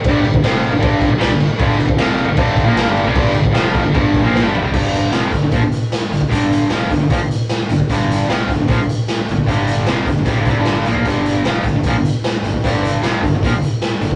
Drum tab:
CC |x-x-x-x-x-x-x-x-|x-x-x-x-x-x-x-x-|x-x-x-x-x-x-----|x---------------|
HH |----------------|----------------|----------------|--x-x-x-x-x-x-x-|
SD |----o-------o---|-o--o-------oo--|-o--o-------o---|----o-------o---|
FT |----------------|----------------|--------------o-|----------------|
BD |o--o----o-o-----|o--o----o-o-----|o--o--o-o-o-----|o-----o-o------o|

CC |----------------|----------------|----------------|----------------|
HH |x-x-x-x-x-x-x-x-|x-x-x-x-x-x-x-x-|x-x-x-x-x-x-x-x-|x-x-x-x-x-x-x-x-|
SD |----o-------o---|----o-------o---|----o-------o---|----o-------o---|
FT |----------------|----------------|----------------|----------------|
BD |o-----o-o------o|o-----o-o------o|o-----o-o-o----o|o-----o-o------o|

CC |----------------|
HH |x-x-x-x-x-x-x-x-|
SD |----o-------o---|
FT |----------------|
BD |o-----o-o------o|